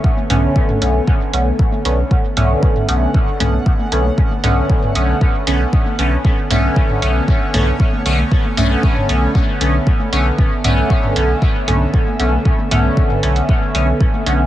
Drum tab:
HH |--x---x---x---x-|--x---x---x---x-|--x---x---x---x-|--x---x---x---x-|
T2 |--o--o----------|--o--o----o-----|--o--o----------|--o--o----o-----|
CG |-o-----------o--|----------o--o-o|-o-----------o--|----------o--o-o|
BD |o---o---o---o---|o---o---o---o---|o---o---o---o---|o---o---o---o---|

HH |--x---x---x---x-|--x---x---x---x-|--x---xx--x---x-|
T2 |--o--o----------|--o--o----o-----|--o--o----------|
CG |-o-----------o--|----------o--o-o|-o-----------o--|
BD |o---o---o---o---|o---o---o---o---|o---o---o---o---|